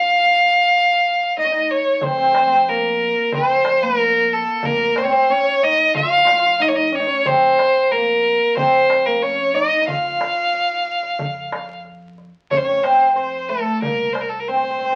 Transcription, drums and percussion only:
2.01 darbuka dum medium
2.35 darbuka tek medium
2.51 darbuka ka soft
2.67 darbuka ka soft
3.16 darbuka ka soft
3.32 darbuka dum medium
3.65 darbuka tek medium
3.82 darbuka ka soft
3.98 darbuka ka soft
4.31 darbuka ka soft
4.63 darbuka dum medium
4.96 darbuka tek medium
5.13 darbuka ka soft
5.29 darbuka ka soft
5.78 darbuka ka soft
5.95 darbuka dum medium
6.27 darbuka tek medium
6.44 darbuka ka soft
6.60 darbuka ka soft
6.93 darbuka ka soft
7.26 darbuka dum medium
7.42 darbuka ka soft
7.59 darbuka tek medium
7.75 darbuka ka soft
7.91 darbuka ka soft
8.41 darbuka ka soft
8.57 darbuka dum medium
8.90 darbuka tek medium
9.06 darbuka ka soft
9.23 darbuka ka soft
9.55 darbuka ka soft
9.88 darbuka dum medium
10.05 darbuka ka soft
10.21 darbuka tek medium
10.37 darbuka ka soft
10.54 darbuka ka soft
11.03 darbuka ka soft
11.19 darbuka dum medium
11.52 darbuka tek medium
11.69 darbuka ka soft
11.85 darbuka ka soft
12.18 darbuka ka soft
12.51 darbuka dum medium
12.84 darbuka tek medium
13.66 darbuka ka soft
13.82 darbuka dum medium
14.15 darbuka tek medium
14.31 darbuka ka soft
14.48 darbuka ka soft
14.81 darbuka ka soft

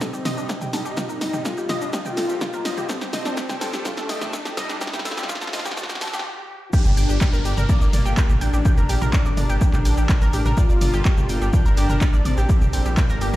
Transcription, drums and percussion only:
0.01 kick loud
0.01 snare medium
0.01 shaker medium
0.14 shaker soft
0.25 snare medium
0.25 mid tom medium
0.25 open hi-hat loud
0.25 shaker medium
0.38 shaker soft
0.49 kick loud
0.49 snare medium
0.49 shaker medium
0.61 mid tom loud
0.61 shaker soft
0.73 snare medium
0.73 open hi-hat loud
0.73 shaker medium
0.85 shaker soft
0.97 kick loud
0.97 snare medium
0.97 mid tom loud
0.97 shaker medium
1.09 shaker soft
1.21 snare medium
1.21 open hi-hat loud
1.21 shaker medium
1.33 mid tom loud
1.33 shaker soft
1.45 kick loud
1.45 snare medium
1.45 shaker medium
1.57 shaker soft
1.69 snare medium
1.69 mid tom loud
1.69 open hi-hat medium
1.69 shaker medium
1.81 shaker soft
1.93 kick loud
1.93 snare medium
1.93 shaker medium
2.05 mid tom loud
2.05 shaker soft
2.17 snare medium
2.17 open hi-hat loud
2.17 shaker medium
2.29 shaker soft
2.41 kick loud
2.41 snare medium
2.41 mid tom loud
2.41 shaker medium
2.53 shaker soft
2.65 snare medium
2.65 open hi-hat medium
2.65 shaker medium
2.77 mid tom medium
2.77 shaker soft
2.89 kick loud
2.89 snare medium
2.89 shaker medium
3.01 snare medium
3.01 shaker soft
3.13 snare medium
3.13 mid tom loud
3.13 open hi-hat loud
3.13 shaker medium
3.25 snare medium
3.25 shaker soft
3.37 kick loud
3.37 snare medium
3.37 shaker medium
3.49 snare medium
3.49 mid tom medium
3.49 shaker soft
3.61 snare loud
3.61 open hi-hat medium
3.61 shaker medium
3.73 snare medium
3.73 shaker soft
3.85 kick loud
3.85 snare loud
3.85 mid tom loud
3.85 shaker medium
3.97 snare medium
3.97 shaker soft
4.09 snare loud
4.09 open hi-hat loud
4.09 shaker medium
4.21 snare medium
4.21 mid tom loud
4.21 shaker soft
4.33 kick loud
4.33 snare loud
4.33 shaker medium
4.45 snare medium
4.45 shaker soft
4.57 snare loud
4.57 mid tom loud
4.57 open hi-hat medium
4.57 shaker medium
4.69 snare medium
4.69 shaker soft
4.81 kick loud
4.81 snare loud
4.81 shaker medium
4.87 snare medium
4.93 snare medium
4.93 mid tom loud
4.93 shaker soft
4.99 snare medium
5.05 snare loud
5.05 open hi-hat loud
5.05 shaker medium
5.11 snare medium
5.17 snare medium
5.17 shaker soft
5.23 snare medium
5.29 kick loud
5.29 snare loud
5.29 mid tom loud
5.29 shaker medium
5.35 snare medium
5.41 snare medium
5.41 shaker soft
5.47 snare medium
5.53 snare loud
5.53 open hi-hat medium
5.53 shaker medium
5.59 snare medium
5.65 snare loud
5.65 mid tom loud
5.65 shaker medium
5.71 snare loud
5.77 kick loud
5.77 snare loud
5.77 shaker medium
5.83 snare medium
5.89 snare loud
5.89 shaker medium
5.95 snare loud
6.01 snare loud
6.01 mid tom loud
6.01 open hi-hat loud
6.01 shaker medium
6.07 snare loud
6.13 snare loud
6.13 shaker soft
6.19 snare loud
6.73 kick loud
6.73 crash loud
6.73 shaker medium
6.85 mid tom medium
6.85 shaker soft
6.97 open hi-hat loud
6.97 shaker medium
7.09 shaker medium
7.21 kick loud
7.21 clap loud
7.21 mid tom medium
7.21 shaker medium
7.33 shaker soft
7.45 open hi-hat loud
7.45 shaker medium
7.57 mid tom medium
7.57 shaker soft
7.69 kick loud
7.69 shaker medium
7.81 shaker soft
7.93 mid tom loud
7.93 open hi-hat loud
7.93 shaker medium
8.06 shaker soft
8.17 kick loud
8.17 clap loud
8.17 shaker medium
8.29 mid tom loud
8.29 shaker soft
8.41 open hi-hat medium
8.41 shaker medium
8.54 shaker soft
8.65 kick loud
8.65 mid tom medium
8.65 shaker medium
8.78 shaker soft
8.89 open hi-hat loud
8.89 shaker medium
9.02 mid tom medium
9.02 shaker soft
9.13 kick loud
9.13 clap loud
9.13 shaker medium
9.26 shaker soft
9.37 mid tom medium
9.37 open hi-hat loud
9.37 shaker medium
9.49 shaker soft
9.61 kick loud
9.61 shaker medium
9.73 clap soft
9.73 mid tom medium
9.73 shaker soft
9.85 open hi-hat loud
9.85 shaker medium
9.97 shaker soft
10.09 kick loud
10.09 clap loud
10.09 mid tom medium
10.09 shaker medium
10.21 shaker soft
10.33 open hi-hat loud
10.33 shaker medium
10.46 mid tom medium
10.46 shaker soft
10.57 kick loud
10.57 shaker medium
10.70 shaker soft
10.81 mid tom medium
10.81 open hi-hat loud
10.81 shaker medium
10.93 shaker soft
11.05 kick loud
11.05 clap loud
11.05 shaker medium
11.18 mid tom medium
11.18 shaker soft
11.29 open hi-hat loud
11.29 shaker medium
11.42 shaker soft
11.53 kick loud
11.53 mid tom medium
11.53 shaker medium
11.66 shaker soft
11.77 open hi-hat loud
11.77 shaker medium
11.89 mid tom medium
11.89 shaker soft
12.01 kick loud
12.01 clap loud
12.01 shaker medium
12.13 shaker soft
12.25 mid tom medium
12.25 open hi-hat loud
12.25 shaker medium
12.38 shaker soft
12.49 kick loud
12.49 shaker medium
12.61 mid tom medium
12.61 shaker soft
12.73 open hi-hat loud
12.73 shaker medium
12.85 shaker soft
12.97 kick loud
12.97 clap loud
12.97 mid tom medium
12.97 shaker medium
13.09 shaker soft
13.21 open hi-hat medium
13.21 shaker medium

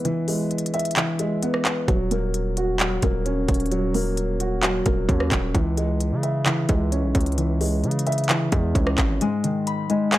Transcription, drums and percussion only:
0.05 closed hi-hat medium
0.28 open hi-hat medium
0.51 closed hi-hat soft
0.58 closed hi-hat medium
0.66 closed hi-hat medium
0.74 closed hi-hat medium
0.79 closed hi-hat medium
0.85 closed hi-hat medium
0.91 closed hi-hat medium
0.96 clap loud
0.96 closed hi-hat medium
1.19 closed hi-hat medium
1.43 closed hi-hat medium
1.54 cross-stick medium
1.65 clap loud
1.65 closed hi-hat medium
1.88 kick loud
1.88 closed hi-hat medium
2.11 closed hi-hat medium
2.34 closed hi-hat medium
2.57 closed hi-hat medium
2.80 clap loud
2.80 closed hi-hat medium
3.02 kick medium
3.02 closed hi-hat medium
3.26 closed hi-hat medium
3.48 kick medium
3.48 closed hi-hat medium
3.54 closed hi-hat medium
3.60 closed hi-hat medium
3.66 closed hi-hat soft
3.72 closed hi-hat medium
3.94 open hi-hat medium
4.17 closed hi-hat medium
4.40 closed hi-hat medium
4.63 clap loud
4.63 closed hi-hat medium
4.86 kick medium
4.86 closed hi-hat medium
5.09 kick medium
5.09 closed hi-hat medium
5.20 cross-stick medium
5.31 kick medium
5.31 clap loud
5.31 closed hi-hat medium
5.55 kick loud
5.55 closed hi-hat medium
5.77 closed hi-hat medium
6.00 closed hi-hat medium
6.23 closed hi-hat medium
6.46 clap loud
6.46 closed hi-hat medium
6.69 kick medium
6.69 closed hi-hat medium
6.92 closed hi-hat medium
7.15 kick medium
7.15 closed hi-hat medium
7.21 closed hi-hat medium
7.26 closed hi-hat medium
7.32 closed hi-hat soft
7.38 closed hi-hat medium
7.61 open hi-hat medium
7.84 closed hi-hat soft
7.91 closed hi-hat medium
7.99 closed hi-hat medium
8.07 closed hi-hat medium
8.12 closed hi-hat medium
8.18 closed hi-hat medium
8.24 closed hi-hat medium
8.29 clap loud
8.29 closed hi-hat medium
8.52 kick medium
8.52 closed hi-hat medium
8.75 kick medium
8.75 closed hi-hat medium
8.87 cross-stick loud
8.98 kick medium
8.98 clap loud
8.98 closed hi-hat medium
9.21 closed hi-hat medium
9.44 closed hi-hat medium
9.67 closed hi-hat medium
9.90 closed hi-hat medium
10.12 clap loud
10.12 closed hi-hat medium

